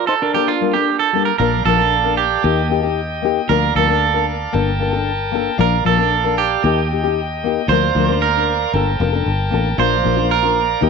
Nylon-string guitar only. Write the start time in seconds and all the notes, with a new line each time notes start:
0.34 A#3 D4 A4, muted nylon-string guitar stroke
0.61 G3 A#3 D4 A4
0.73 A#3 D4 A4
1.13 G3 A#3 D4 A4
1.39 F3 A#3 D4 A#4
1.65 F3 A#3 D4 A#4
1.77 A#3 D4 A#4
2.03 A#3 D4 A#4
2.43 A#3 D#4 G4
2.69 A#3 D#4 G4
2.83 D#4 G4
3.22 A#3 D#4 G4
3.48 F3 A#3 D4 A#4
3.75 F3 A#3 D4 A#4
3.88 A#3 D4 A#4
4.14 A#3 D4 A#4
4.52 A#3 D4 A4
4.79 A#3 D4 A4
4.93 D4 A4
5.32 A#3 D4 A4
5.58 F3 A#3 D4 A#4
5.84 F3 A#3 D4 A#4
5.97 A#3 D4 A#4
6.24 A#3 D4 A#4
6.63 A#3 D#4 G4
6.92 D#4 G4
7.04 D#4 G4
7.44 A#3 D#4 G4
7.70 F3 A#3 D4 A#4
7.95 F3 A#3 D4 A#4
8.09 A#3 D4 A#4
8.37 A#3 D4
8.74 A#3 D4 A4
9.00 A#3 D4 A4
9.12 D4 A4
9.50 A#3 D4 A4
9.78 F3 A#3 D4 F4
10.03 F3 A#3 D4
10.16 A#3 D4 F4
10.43 A#3 D4 F4
10.81 D#3 A#3 D#4 G4